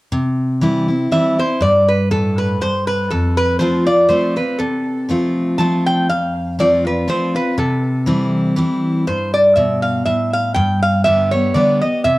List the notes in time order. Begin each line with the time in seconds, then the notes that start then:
0.12 C3
0.61 E3 G3 C4 E4
0.88 C4 E4
1.11 E3 G3 C4 E4 E5
1.39 C4 E4 C5
1.61 G2 D5
1.88 B4
2.11 A2 A4
2.38 B4
2.61 G2 C5
2.87 B4
3.10 F2 A4
3.37 B4
3.59 F3 A3 C4 F4 C5
3.87 C4 F4 D5
4.09 F3 A3 C4 F4 C5
4.36 C4 F4 B4
4.59 C3 A4
5.09 F3 A3 C4 F4
5.58 F3 A3 C4 F4 A5
5.86 G5
6.09 F2 F5
6.59 F3 A3 C4 F4 D5
6.85 C4 F4 B4
7.08 F3 A3 C4 F4 C5
7.35 C4 F4 B4
7.58 C3 A4
8.06 E3 G3 C4 E4
8.56 E3 G3 C4 E4
9.07 G2 C5
9.34 D5
9.56 B2 E5
9.82 F5
10.05 A2 E5
10.33 F5
10.54 G2 G5
10.82 F5
11.04 D3 G3 B3 G4 E5
11.31 B3 G4 C#5
11.54 D3 G3 B3 G4 D5
11.81 B3 G4 D#5
12.04 C3 E5